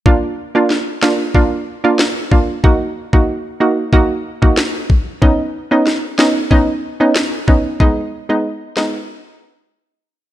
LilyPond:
<<
  \new Staff \with { instrumentName = "Synth pluck" } { \time 4/4 \key bes \phrygian \tempo 4 = 93 <bes d' f'>16 r8 <bes d' f'>16 r8 <bes d' f'>16 r16 <bes d' f'>16 r8 <bes d' f'>16 r8 <bes d' f'>16 r16 | <bes ees' ges'>16 r8 <bes ees' ges'>16 r8 <bes ees' ges'>16 r16 <bes ees' ges'>16 r8 <bes ees' ges'>16 r4 | <b cis' dis'>16 r8 <b cis' dis'>16 r8 <b cis' dis'>16 r16 <b cis' dis'>16 r8 <b cis' dis'>16 r8 <b cis' dis'>16 r16 | <aes ces' ees'>16 r8 <aes ces' ees'>16 r8 <aes ces' ees'>16 r2 r16 | }
  \new DrumStaff \with { instrumentName = "Drums" } \drummode { \time 4/4 bd4 sn8 sn8 bd4 sn8 bd8 | bd8. bd16 r4 bd8. bd16 sn8 bd8 | bd4 sn8 sn8 bd4 sn8 bd8 | bd4 r8 sn8 r4 r4 | }
>>